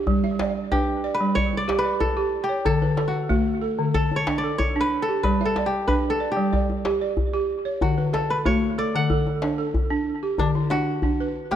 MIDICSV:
0, 0, Header, 1, 4, 480
1, 0, Start_track
1, 0, Tempo, 644468
1, 51, Time_signature, 4, 2, 24, 8
1, 8608, End_track
2, 0, Start_track
2, 0, Title_t, "Kora"
2, 0, Program_c, 0, 46
2, 0, Note_on_c, 0, 62, 67
2, 0, Note_on_c, 0, 64, 74
2, 0, Note_on_c, 0, 66, 92
2, 83, Note_off_c, 0, 64, 0
2, 166, Note_off_c, 0, 66, 0
2, 533, Note_on_c, 0, 67, 80
2, 653, Note_off_c, 0, 62, 0
2, 852, Note_on_c, 0, 71, 88
2, 1006, Note_on_c, 0, 73, 104
2, 1172, Note_on_c, 0, 74, 95
2, 1217, Note_off_c, 0, 73, 0
2, 1327, Note_off_c, 0, 71, 0
2, 1330, Note_on_c, 0, 71, 94
2, 1492, Note_on_c, 0, 69, 85
2, 1585, Note_off_c, 0, 67, 0
2, 1815, Note_on_c, 0, 67, 79
2, 1976, Note_off_c, 0, 69, 0
2, 1979, Note_on_c, 0, 69, 85
2, 1997, Note_off_c, 0, 74, 0
2, 2246, Note_off_c, 0, 71, 0
2, 2292, Note_on_c, 0, 66, 65
2, 2337, Note_off_c, 0, 67, 0
2, 2935, Note_off_c, 0, 69, 0
2, 2938, Note_on_c, 0, 69, 97
2, 3100, Note_on_c, 0, 73, 102
2, 3263, Note_on_c, 0, 74, 91
2, 3307, Note_off_c, 0, 73, 0
2, 3381, Note_off_c, 0, 66, 0
2, 3414, Note_on_c, 0, 73, 94
2, 3459, Note_off_c, 0, 74, 0
2, 3579, Note_on_c, 0, 71, 94
2, 3739, Note_off_c, 0, 69, 0
2, 3742, Note_on_c, 0, 69, 85
2, 3895, Note_off_c, 0, 71, 0
2, 3898, Note_on_c, 0, 71, 89
2, 4060, Note_off_c, 0, 69, 0
2, 4063, Note_on_c, 0, 69, 83
2, 4217, Note_on_c, 0, 67, 75
2, 4268, Note_off_c, 0, 73, 0
2, 4374, Note_off_c, 0, 71, 0
2, 4377, Note_on_c, 0, 71, 84
2, 4421, Note_off_c, 0, 71, 0
2, 4540, Note_off_c, 0, 69, 0
2, 4543, Note_on_c, 0, 69, 82
2, 4701, Note_off_c, 0, 67, 0
2, 4704, Note_on_c, 0, 67, 77
2, 5525, Note_off_c, 0, 69, 0
2, 5756, Note_off_c, 0, 67, 0
2, 5824, Note_on_c, 0, 66, 70
2, 6060, Note_on_c, 0, 69, 76
2, 6185, Note_on_c, 0, 71, 87
2, 6229, Note_off_c, 0, 71, 0
2, 6301, Note_on_c, 0, 73, 90
2, 6543, Note_on_c, 0, 74, 83
2, 6588, Note_off_c, 0, 73, 0
2, 6670, Note_on_c, 0, 78, 94
2, 6913, Note_off_c, 0, 66, 0
2, 7042, Note_off_c, 0, 69, 0
2, 7368, Note_off_c, 0, 74, 0
2, 7388, Note_off_c, 0, 78, 0
2, 7741, Note_on_c, 0, 62, 85
2, 7805, Note_off_c, 0, 62, 0
2, 7976, Note_on_c, 0, 66, 94
2, 8576, Note_on_c, 0, 67, 93
2, 8608, Note_off_c, 0, 66, 0
2, 8608, Note_off_c, 0, 67, 0
2, 8608, End_track
3, 0, Start_track
3, 0, Title_t, "Balafon"
3, 0, Program_c, 1, 12
3, 0, Note_on_c, 1, 67, 60
3, 53, Note_on_c, 1, 55, 84
3, 177, Note_off_c, 1, 67, 0
3, 177, Note_on_c, 1, 76, 61
3, 292, Note_off_c, 1, 55, 0
3, 294, Note_on_c, 1, 74, 66
3, 533, Note_off_c, 1, 76, 0
3, 535, Note_on_c, 1, 62, 76
3, 536, Note_on_c, 1, 71, 69
3, 658, Note_off_c, 1, 74, 0
3, 774, Note_off_c, 1, 62, 0
3, 775, Note_on_c, 1, 74, 68
3, 898, Note_on_c, 1, 55, 77
3, 899, Note_off_c, 1, 71, 0
3, 1001, Note_off_c, 1, 74, 0
3, 1010, Note_on_c, 1, 74, 65
3, 1138, Note_off_c, 1, 55, 0
3, 1250, Note_on_c, 1, 67, 75
3, 1367, Note_off_c, 1, 74, 0
3, 1376, Note_on_c, 1, 74, 62
3, 1493, Note_off_c, 1, 67, 0
3, 1614, Note_on_c, 1, 67, 81
3, 1734, Note_off_c, 1, 74, 0
3, 1855, Note_on_c, 1, 73, 63
3, 1857, Note_off_c, 1, 67, 0
3, 1975, Note_on_c, 1, 50, 82
3, 2098, Note_off_c, 1, 73, 0
3, 2100, Note_on_c, 1, 71, 62
3, 2213, Note_on_c, 1, 69, 69
3, 2216, Note_off_c, 1, 50, 0
3, 2453, Note_on_c, 1, 57, 79
3, 2454, Note_on_c, 1, 66, 72
3, 2456, Note_off_c, 1, 71, 0
3, 2579, Note_off_c, 1, 69, 0
3, 2692, Note_on_c, 1, 69, 68
3, 2695, Note_off_c, 1, 57, 0
3, 2820, Note_off_c, 1, 66, 0
3, 2820, Note_on_c, 1, 50, 74
3, 2929, Note_off_c, 1, 69, 0
3, 2938, Note_on_c, 1, 69, 69
3, 3061, Note_off_c, 1, 50, 0
3, 3180, Note_on_c, 1, 62, 72
3, 3297, Note_off_c, 1, 69, 0
3, 3305, Note_on_c, 1, 69, 57
3, 3419, Note_off_c, 1, 62, 0
3, 3545, Note_on_c, 1, 62, 80
3, 3660, Note_off_c, 1, 69, 0
3, 3784, Note_off_c, 1, 62, 0
3, 3788, Note_on_c, 1, 67, 61
3, 3907, Note_on_c, 1, 55, 80
3, 4025, Note_off_c, 1, 67, 0
3, 4028, Note_on_c, 1, 76, 65
3, 4142, Note_off_c, 1, 55, 0
3, 4148, Note_on_c, 1, 74, 69
3, 4381, Note_off_c, 1, 76, 0
3, 4382, Note_on_c, 1, 62, 81
3, 4382, Note_on_c, 1, 71, 68
3, 4507, Note_off_c, 1, 74, 0
3, 4619, Note_on_c, 1, 74, 62
3, 4620, Note_off_c, 1, 62, 0
3, 4743, Note_on_c, 1, 55, 77
3, 4744, Note_off_c, 1, 71, 0
3, 4852, Note_off_c, 1, 74, 0
3, 4861, Note_on_c, 1, 74, 72
3, 4982, Note_off_c, 1, 55, 0
3, 5102, Note_on_c, 1, 67, 75
3, 5215, Note_off_c, 1, 74, 0
3, 5224, Note_on_c, 1, 74, 65
3, 5340, Note_off_c, 1, 67, 0
3, 5463, Note_on_c, 1, 67, 76
3, 5579, Note_off_c, 1, 74, 0
3, 5700, Note_on_c, 1, 73, 62
3, 5702, Note_off_c, 1, 67, 0
3, 5822, Note_on_c, 1, 50, 80
3, 5940, Note_off_c, 1, 73, 0
3, 5942, Note_on_c, 1, 71, 61
3, 6057, Note_on_c, 1, 69, 69
3, 6060, Note_off_c, 1, 50, 0
3, 6297, Note_off_c, 1, 71, 0
3, 6297, Note_on_c, 1, 66, 69
3, 6298, Note_on_c, 1, 57, 81
3, 6421, Note_off_c, 1, 69, 0
3, 6537, Note_off_c, 1, 57, 0
3, 6540, Note_on_c, 1, 69, 66
3, 6660, Note_off_c, 1, 66, 0
3, 6664, Note_on_c, 1, 50, 75
3, 6768, Note_off_c, 1, 69, 0
3, 6777, Note_on_c, 1, 69, 72
3, 6902, Note_off_c, 1, 50, 0
3, 7021, Note_on_c, 1, 62, 71
3, 7128, Note_off_c, 1, 69, 0
3, 7137, Note_on_c, 1, 69, 61
3, 7258, Note_off_c, 1, 62, 0
3, 7376, Note_on_c, 1, 62, 78
3, 7494, Note_off_c, 1, 69, 0
3, 7617, Note_off_c, 1, 62, 0
3, 7618, Note_on_c, 1, 67, 61
3, 7735, Note_on_c, 1, 50, 82
3, 7858, Note_off_c, 1, 67, 0
3, 7858, Note_on_c, 1, 64, 59
3, 7974, Note_off_c, 1, 50, 0
3, 7976, Note_on_c, 1, 62, 69
3, 8205, Note_off_c, 1, 62, 0
3, 8213, Note_off_c, 1, 64, 0
3, 8214, Note_on_c, 1, 62, 78
3, 8345, Note_on_c, 1, 71, 62
3, 8453, Note_off_c, 1, 62, 0
3, 8582, Note_on_c, 1, 57, 76
3, 8608, Note_off_c, 1, 57, 0
3, 8608, Note_off_c, 1, 71, 0
3, 8608, End_track
4, 0, Start_track
4, 0, Title_t, "Djembe"
4, 50, Note_on_c, 9, 62, 22
4, 50, Note_on_c, 9, 64, 76
4, 125, Note_off_c, 9, 62, 0
4, 125, Note_off_c, 9, 64, 0
4, 175, Note_on_c, 9, 63, 53
4, 250, Note_off_c, 9, 63, 0
4, 293, Note_on_c, 9, 62, 72
4, 368, Note_off_c, 9, 62, 0
4, 535, Note_on_c, 9, 62, 23
4, 535, Note_on_c, 9, 64, 72
4, 609, Note_off_c, 9, 62, 0
4, 609, Note_off_c, 9, 64, 0
4, 1016, Note_on_c, 9, 62, 23
4, 1016, Note_on_c, 9, 64, 73
4, 1091, Note_off_c, 9, 62, 0
4, 1091, Note_off_c, 9, 64, 0
4, 1142, Note_on_c, 9, 63, 56
4, 1216, Note_off_c, 9, 63, 0
4, 1258, Note_on_c, 9, 62, 76
4, 1332, Note_off_c, 9, 62, 0
4, 1495, Note_on_c, 9, 64, 69
4, 1570, Note_off_c, 9, 64, 0
4, 1978, Note_on_c, 9, 62, 23
4, 1978, Note_on_c, 9, 64, 74
4, 2052, Note_off_c, 9, 62, 0
4, 2052, Note_off_c, 9, 64, 0
4, 2100, Note_on_c, 9, 63, 56
4, 2174, Note_off_c, 9, 63, 0
4, 2215, Note_on_c, 9, 62, 64
4, 2289, Note_off_c, 9, 62, 0
4, 2458, Note_on_c, 9, 62, 24
4, 2458, Note_on_c, 9, 64, 79
4, 2532, Note_off_c, 9, 62, 0
4, 2532, Note_off_c, 9, 64, 0
4, 2938, Note_on_c, 9, 62, 23
4, 2938, Note_on_c, 9, 64, 68
4, 3013, Note_off_c, 9, 62, 0
4, 3013, Note_off_c, 9, 64, 0
4, 3065, Note_on_c, 9, 63, 59
4, 3139, Note_off_c, 9, 63, 0
4, 3179, Note_on_c, 9, 62, 82
4, 3254, Note_off_c, 9, 62, 0
4, 3421, Note_on_c, 9, 64, 71
4, 3496, Note_off_c, 9, 64, 0
4, 3901, Note_on_c, 9, 62, 24
4, 3901, Note_on_c, 9, 64, 75
4, 3975, Note_off_c, 9, 62, 0
4, 3975, Note_off_c, 9, 64, 0
4, 4026, Note_on_c, 9, 63, 62
4, 4100, Note_off_c, 9, 63, 0
4, 4140, Note_on_c, 9, 62, 72
4, 4215, Note_off_c, 9, 62, 0
4, 4381, Note_on_c, 9, 62, 26
4, 4381, Note_on_c, 9, 64, 79
4, 4456, Note_off_c, 9, 62, 0
4, 4456, Note_off_c, 9, 64, 0
4, 4864, Note_on_c, 9, 62, 23
4, 4864, Note_on_c, 9, 64, 77
4, 4939, Note_off_c, 9, 62, 0
4, 4939, Note_off_c, 9, 64, 0
4, 4987, Note_on_c, 9, 63, 53
4, 5062, Note_off_c, 9, 63, 0
4, 5102, Note_on_c, 9, 62, 80
4, 5176, Note_off_c, 9, 62, 0
4, 5339, Note_on_c, 9, 64, 68
4, 5414, Note_off_c, 9, 64, 0
4, 5820, Note_on_c, 9, 64, 79
4, 5894, Note_off_c, 9, 64, 0
4, 5946, Note_on_c, 9, 62, 23
4, 5946, Note_on_c, 9, 63, 57
4, 6020, Note_off_c, 9, 62, 0
4, 6020, Note_off_c, 9, 63, 0
4, 6060, Note_on_c, 9, 62, 68
4, 6134, Note_off_c, 9, 62, 0
4, 6298, Note_on_c, 9, 64, 80
4, 6372, Note_off_c, 9, 64, 0
4, 6539, Note_on_c, 9, 62, 23
4, 6613, Note_off_c, 9, 62, 0
4, 6777, Note_on_c, 9, 64, 72
4, 6852, Note_off_c, 9, 64, 0
4, 6902, Note_on_c, 9, 63, 57
4, 6977, Note_off_c, 9, 63, 0
4, 7015, Note_on_c, 9, 62, 75
4, 7089, Note_off_c, 9, 62, 0
4, 7257, Note_on_c, 9, 64, 76
4, 7331, Note_off_c, 9, 64, 0
4, 7496, Note_on_c, 9, 62, 24
4, 7571, Note_off_c, 9, 62, 0
4, 7733, Note_on_c, 9, 64, 67
4, 7807, Note_off_c, 9, 64, 0
4, 7858, Note_on_c, 9, 63, 54
4, 7932, Note_off_c, 9, 63, 0
4, 7971, Note_on_c, 9, 62, 65
4, 8045, Note_off_c, 9, 62, 0
4, 8210, Note_on_c, 9, 64, 70
4, 8284, Note_off_c, 9, 64, 0
4, 8453, Note_on_c, 9, 62, 22
4, 8527, Note_off_c, 9, 62, 0
4, 8573, Note_on_c, 9, 62, 55
4, 8608, Note_off_c, 9, 62, 0
4, 8608, End_track
0, 0, End_of_file